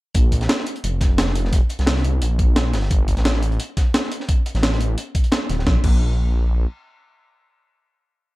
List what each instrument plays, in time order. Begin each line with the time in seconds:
0.14 detuned saw bass A#1, kick, closed hi-hat
0.32 kick, closed hi-hat
0.41 snare, closed hi-hat
0.49 snare, closed hi-hat
0.58 snare
0.66 closed hi-hat
0.76 closed hi-hat
0.84 detuned saw bass F1, closed hi-hat
1.01 kick, snare, closed hi-hat
1.18 snare, closed hi-hat
1.27 snare
1.35 closed hi-hat
1.45 snare
1.53 kick, closed hi-hat
1.69 closed hi-hat
1.79 detuned saw bass C2, snare, closed hi-hat
1.87 snare, closed hi-hat, open hi-hat
1.96 snare
2.04 closed hi-hat
2.22 detuned saw bass A#1, closed hi-hat
2.39 kick, closed hi-hat
2.48 detuned saw bass A#1
2.56 snare, closed hi-hat
2.73 detuned saw bass G1, snare, closed hi-hat, open hi-hat
2.83 snare
2.91 kick, closed hi-hat
3.08 kick, closed hi-hat
3.17 detuned saw bass A1, snare, closed hi-hat
3.25 snare, closed hi-hat
3.34 snare
3.43 closed hi-hat
3.52 closed hi-hat
3.60 closed hi-hat
3.77 kick, snare, closed hi-hat
3.94 snare, closed hi-hat
4.04 snare
4.12 closed hi-hat
4.20 snare
4.28 kick, closed hi-hat
4.46 closed hi-hat
4.55 detuned saw bass A1, snare, closed hi-hat
4.63 snare, closed hi-hat, open hi-hat
4.73 snare
4.80 closed hi-hat
4.98 closed hi-hat
5.15 kick, closed hi-hat
5.24 closed hi-hat
5.32 snare, closed hi-hat
5.49 detuned saw bass D1, snare, closed hi-hat
5.59 snare
5.67 detuned saw bass A#1, kick, snare
5.84 detuned saw bass A#1, kick, crash